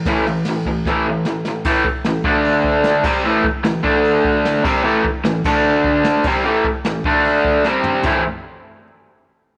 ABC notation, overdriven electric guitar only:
X:1
M:4/4
L:1/8
Q:1/4=150
K:Am
V:1 name="Overdriven electric guitar" clef=bass
[A,,E,A,] [A,,E,] [A,,E,] [A,,E,] [A,,E,A,] [A,,E,] [A,,E,] [A,,E,] | [A,,E,A,] z [A,,E,] [D,A,D]4 [C,G,C] | [A,,E,A,] z [A,,E,] [D,A,D]4 [C,G,C] | [A,,E,A,] z [A,,E,] [D,A,D]4 [C,G,C] |
[A,,E,A,] z [A,,E,] [D,A,D]3 [C,G,C]2 | [A,,E,A,CE] z6 z |]